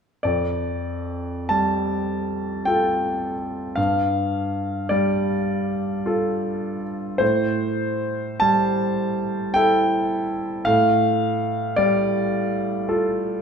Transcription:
0.23 3.73 F2 soft
0.23 1.49 D5 medium
1.49 3.33 G3 soft
1.49 2.66 A5 medium
2.65 3.74 F4 soft
2.65 3.74 A4 soft
2.65 3.77 G5 medium
3.76 7.17 G2 soft
3.76 4.90 F5 medium
4.89 6.75 G3 soft
4.89 6.81 D5 medium
6.06 7.17 F4 soft
6.06 7.17 A4 soft
7.18 10.64 A2 soft
7.18 8.41 C5 medium
8.40 10.23 G3 soft
8.40 9.55 A5 medium
9.54 10.64 E4 soft
9.54 10.64 A4 soft
9.54 10.67 G5 medium
10.65 13.42 A2 soft
10.65 11.78 F5 medium
11.76 13.42 G3 soft
11.76 13.42 D5 medium
12.89 13.42 F4 soft
12.89 13.42 A4 soft

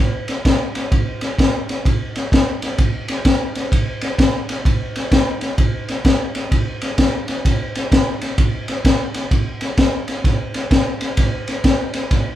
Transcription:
0.28 snare soft
0.28 ride medium
0.45 kick medium
0.45 snare loud
0.45 ride medium
0.75 snare soft
0.75 ride medium
0.92 kick medium
0.92 ride medium
1.21 snare soft
1.21 ride medium
1.39 kick medium
1.39 snare loud
1.39 ride medium
1.69 snare soft
1.69 ride medium
1.85 kick medium
1.85 ride medium
2.16 snare soft
2.16 ride medium
2.32 kick medium
2.32 snare loud
2.32 ride medium
2.62 snare soft
2.62 ride medium
2.78 kick medium
2.78 ride medium
3.08 snare soft
3.08 ride medium
3.25 kick medium
3.25 snare loud
3.25 ride medium
3.55 snare soft
3.55 ride medium
3.72 kick medium
3.72 ride loud
4.01 snare soft
4.01 ride medium
4.18 kick medium
4.18 snare loud
4.18 ride medium
4.49 snare soft
4.49 ride medium
4.65 kick medium
4.65 ride medium
4.96 snare soft
4.96 ride medium
5.12 kick medium
5.12 snare loud
5.12 ride medium
5.41 snare soft
5.41 ride medium
5.58 kick medium
5.58 ride medium
5.88 snare soft
5.88 ride medium
6.05 kick medium
6.05 snare loud
6.05 ride medium
6.35 snare soft
6.35 ride medium
6.52 kick medium
6.52 ride medium
6.82 snare soft
6.82 ride medium
6.98 kick medium
6.98 snare loud
6.98 ride medium
7.28 snare soft
7.28 ride medium
7.45 kick medium
7.45 snare soft
7.45 ride loud
7.75 snare soft
7.75 ride medium
7.92 kick medium
7.92 snare loud
7.92 ride medium
8.21 snare soft
8.21 ride medium
8.38 kick medium
8.38 ride medium
8.68 snare soft
8.68 ride medium
8.85 kick medium
8.85 snare loud
8.85 ride medium
9.14 snare soft
9.14 ride medium
9.31 kick medium
9.31 ride medium
9.61 snare soft
9.61 ride medium
9.77 kick medium
9.77 snare loud
9.77 ride medium
10.08 snare soft
10.08 ride medium
10.24 kick medium
10.24 snare soft
10.24 ride medium
10.54 snare soft
10.54 ride medium
10.71 kick medium
10.71 snare loud
10.71 ride medium
11.01 snare soft
11.01 ride medium
11.17 kick medium
11.17 snare soft
11.17 ride medium
11.48 snare soft
11.48 ride medium
11.64 kick medium
11.64 snare loud
11.64 ride loud
11.94 snare soft
11.94 ride medium
12.11 kick medium
12.11 snare soft
12.11 ride medium

